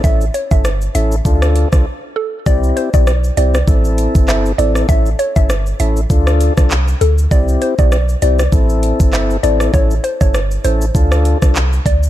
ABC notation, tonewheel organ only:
X:1
M:4/4
L:1/16
Q:"Swing 16ths" 1/4=99
K:Am
V:1 name="Tonewheel organ"
[^CEA] z2 [CEA] z2 [CEA] z [DFA]3 [DFA] z4 | [CEG]3 [CEG] z2 [CEG] z [CEA]6 [CEA]2 | [^CEA] z2 [CEA] z2 [CEA] z [DFA]3 [DFA] z4 | [CEG]3 [CEG] z2 [CEG] z [CEA]6 [CEA]2 |
[^CEA] z2 [CEA] z2 [CEA] z [DFA]3 [DFA] z4 |]